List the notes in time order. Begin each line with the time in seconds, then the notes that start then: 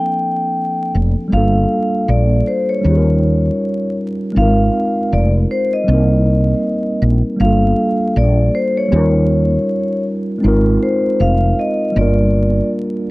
Already playing: F3 A#3 C4 D4 A4 G5
0.94 F1
1.28 G3 A#3
1.32 G1 D4 F4 F5
1.37 A4
2.08 A#1 D5
2.47 C5
2.69 C#5
2.81 D#2 G3 C#4
2.86 D#4 F4
2.90 G#4
2.97 A#4
4.33 G#1 G#3 C4
4.37 D#4 F4 F5
4.42 A#4
5.12 F1 D5
5.51 C5
5.74 D#5
5.84 C2 G3 C4
5.89 A#3 D#4
5.93 A#4
7.02 A#1
7.37 G1 G3 A#3
7.41 D4 F4 F5
7.46 A4
8.16 A#1 D5
8.55 C5
8.77 C#5
8.88 D#2 G3 C#4
8.93 D#4 F4
8.97 A#4
10.38 G#3 C4
10.43 G#1 D#4 F4
10.48 A#4
10.83 C5
11.20 F1 F5
11.59 D#5
11.92 G1 G3 A#3
11.97 D4 F4 D5
12.01 A#4